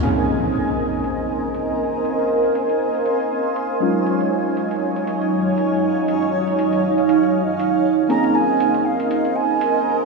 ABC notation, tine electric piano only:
X:1
M:4/4
L:1/8
Q:"Swing 16ths" 1/4=119
K:Bbm
V:1 name="Tine electric piano"
[B,CDEA]8- | [B,CDEA]6- [B,CDEA] [G,A,DEF]- | [G,A,DEF]8- | [G,A,DEF]6- [G,A,DEF] z |
[B,CDEA]8 |]